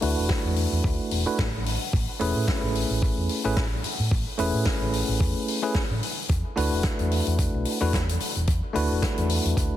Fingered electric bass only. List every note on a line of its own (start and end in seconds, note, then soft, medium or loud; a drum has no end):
0.02 0.14 D2 loud
0.18 0.26 E1 medium
0.45 0.64 E2 medium
0.72 0.81 E2 medium
0.84 0.96 D2 medium
0.99 muted fingered electric bass stroke soft
1.11 1.23 E1 medium
1.26 muted fingered electric bass stroke soft
1.39 1.75 A1 medium
1.93 2.05 A1 loud
2.20 2.32 E1 loud
2.36 2.45 A2 medium
2.63 2.83 A1 medium
2.90 3.10 A1 medium
3.17 3.26 E2 medium
3.45 3.79 A1 medium
3.84 muted fingered electric bass stroke soft
3.99 4.08 A2 medium
4.11 4.23 A1 loud
4.39 4.50 E1 loud
4.54 4.63 A2 medium
4.81 5.01 A1 medium
5.08 5.17 A1 medium
5.20 5.32 E2 medium
5.90 5.99 A2 medium
6.29 6.41 E2 medium
6.57 6.68 D2 loud
6.72 6.81 E1 medium
6.99 7.19 E2 medium
7.27 7.46 E2 loud
7.54 7.63 B1 medium
7.81 8.16 E2 medium
8.21 muted fingered electric bass stroke soft
8.36 8.45 E1 medium
8.48 8.59 E2 loud
8.75 8.87 D2 loud
8.91 8.99 E1 medium
9.18 9.37 E2 medium
9.45 9.54 E2 loud
9.57 9.68 D2 loud
9.72 muted fingered electric bass stroke soft